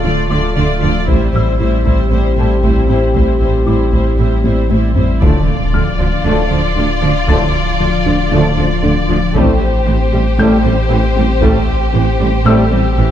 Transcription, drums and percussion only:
1.08 taiko medium
1.86 taiko medium
2.63 taiko medium
3.15 taiko medium
3.93 taiko medium
4.44 taiko high medium
4.70 taiko high medium
4.96 taiko low medium
5.22 taiko medium
7.29 taiko medium
9.36 taiko medium
11.42 taiko medium

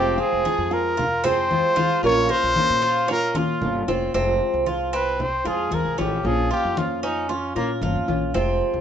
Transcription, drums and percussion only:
0.20 high conga soft
0.46 high conga medium
0.99 high conga soft
0.99 low conga medium
1.25 high conga soft
1.25 low conga medium
1.51 high conga medium
1.77 high conga medium
2.30 high conga soft
2.56 high conga loud
2.83 high conga soft
3.09 high conga soft
3.35 high conga medium
3.62 low conga medium
3.88 low conga medium
4.14 high conga soft
4.41 high conga soft
4.67 high conga medium
5.20 high conga soft
5.20 low conga medium
5.45 high conga soft
5.71 high conga medium
5.98 high conga medium
6.25 high conga soft
6.51 high conga soft
6.77 high conga loud
7.04 high conga soft
7.30 high conga soft
7.56 high conga soft
7.82 high conga medium
8.08 high conga medium
8.35 high conga soft
8.61 high conga soft

